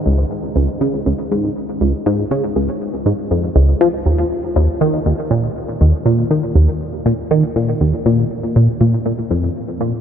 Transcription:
\new Staff \with { instrumentName = "Synth arpeggio sound" } { \clef bass \time 4/4 \key des \major \tempo 4 = 120 des,8 r8 des,16 r16 des8 des,8 aes,8 r8 des,16 r16 | aes,8 des16 r16 des,16 r8. aes,8 f,8 des,8 f8 | ees,8 r8 ees,16 r16 ees8 ees,8 bes,8 r8 ees,16 r16 | bes,8 ees16 r16 ees,16 r8. bes,8 ees16 r16 bes,8 ees,16 r16 |
bes,8 r8 bes,16 r16 bes,8 bes,8 f,8 r8 bes,16 r16 | }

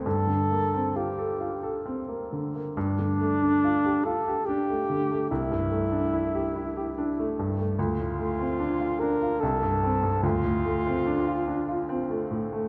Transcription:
<<
  \new Staff \with { instrumentName = "Alto saxophone" } { \time 3/4 \key g \dorian \tempo 4 = 72 a'4 g'4 r4 | d'4. a'8 g'4 | e'2~ e'8 r8 | f'4. bes'8 a'4 |
f'2~ f'8 r8 | }
  \new Staff \with { instrumentName = "Grand piano" } { \time 3/4 \key g \dorian g,16 d16 bes16 c'16 f'16 a'16 f'16 a'16 c'16 bes16 d16 bes16 | g,16 d16 a16 d'16 f'16 g'16 f'16 g'16 d'16 a16 d16 a16 | c,16 g,16 a16 d'16 e'16 g'16 e'16 g'16 d'16 a16 g,16 a16 | d,16 a,16 a16 c'16 d'16 f'16 d'16 f'16 c,16 g,16 c'16 g,16 |
d,16 a,16 a16 c'16 d'16 f'16 d'16 f'16 c'16 a16 a,16 a16 | }
>>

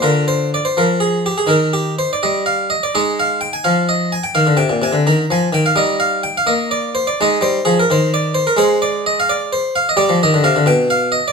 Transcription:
<<
  \new Staff \with { instrumentName = "Harpsichord" } { \time 12/8 \key aes \lydian \tempo 4. = 84 << { bes'8 c''8 d''16 c''16 bes'8 aes'8 g'16 aes'16 bes'8 g'8 c''16 d''16 ees''8 f''8 ees''16 d''16 | ees''8 f''8 g''16 aes''16 f''8 ees''8 aes''16 g''16 f''8 g''8 aes''8 bes''8 aes''8 g''16 f''16 | ees''8 f''8 g''16 f''16 ees''8 d''8 c''16 d''16 ees''8 c''8 aes'16 bes'16 c''8 d''8 c''16 bes'16 | \key g \phrygian c''8 d''8 ees''16 f''16 d''8 c''8 f''16 ees''16 d''8 ees''8 f''8 g''8 f''8 ees''16 d''16 | } \\ { f'2. ees'2. | ees'1. | ees'2. ees'2. | aes'2. g'2. | } >> }
  \new Staff \with { instrumentName = "Harpsichord" } { \clef bass \time 12/8 \key aes \lydian d4. f4. ees4. g4. | aes4. f4. ees16 d16 c16 bes,16 c16 d16 ees8 f8 ees8 | g4. bes4. aes8 g8 f8 ees4. | \key g \phrygian aes2. g16 f16 ees16 d16 c16 d16 b,4. | }
>>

